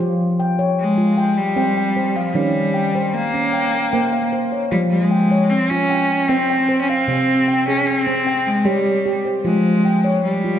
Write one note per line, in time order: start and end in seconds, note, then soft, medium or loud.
0.00 1.36 F3 medium
0.00 0.39 F4 medium
0.00 0.20 C5 medium
0.40 0.98 G5 medium
0.59 0.98 C#5 medium
0.80 1.39 G#3 medium
0.98 1.37 F4 medium
1.18 1.57 G5 medium
1.37 2.17 G3 medium
1.56 2.25 C4 medium
1.56 1.95 C5 medium
1.56 1.76 G5 medium
1.77 2.36 G5 medium
1.97 2.36 C5 medium
2.15 2.37 F3 medium
2.15 2.56 F5 medium
2.35 3.72 D#3 medium
2.35 3.15 G3 medium
2.35 2.75 C#4 medium
2.74 3.34 G5 medium
2.95 3.34 C5 medium
3.14 4.32 A#3 medium
3.34 3.73 C#4 medium
3.53 3.92 G5 medium
3.93 4.62 A#3 medium
3.93 4.31 C5 medium
3.93 4.52 G5 medium
4.13 4.72 F5 medium
4.33 4.72 C5 medium
4.52 4.92 C#5 medium
4.71 6.09 F3 medium
4.71 4.80 G3 medium
4.71 5.11 F4 medium
4.90 5.52 G#3 medium
5.11 5.71 G5 medium
5.31 5.71 C#5 medium
5.50 5.71 C4 medium
5.70 6.30 C#4 medium
5.70 6.10 F4 medium
5.89 6.28 G5 medium
6.29 6.81 C4 medium
6.29 6.98 C4 medium
6.29 6.68 C5 medium
6.29 6.49 G5 medium
6.50 7.09 G5 medium
6.69 7.08 C5 medium
6.81 6.89 C#4 medium
6.88 7.67 C4 medium
6.88 7.29 F5 medium
7.08 8.45 C3 medium
7.08 7.48 C4 medium
7.48 8.07 G5 medium
7.68 7.87 C#4 medium
7.68 8.07 G#4 medium
7.87 7.98 C#4 medium
7.98 8.48 C4 medium
8.07 8.47 C4 medium
8.27 8.86 G5 medium
8.46 8.66 G#3 medium
8.65 9.25 G3 medium
8.65 9.34 G3 medium
8.65 9.05 G4 medium
8.65 8.85 C#5 medium
8.86 9.45 C#5 soft
9.06 9.45 G4 medium
9.25 9.65 C5 medium
9.45 10.59 F3 medium
9.45 10.20 G#3 medium
9.45 9.85 F4 medium
9.85 10.44 G5 medium
10.04 10.44 C#5 medium
10.24 10.59 G3 medium
10.44 10.59 F4 medium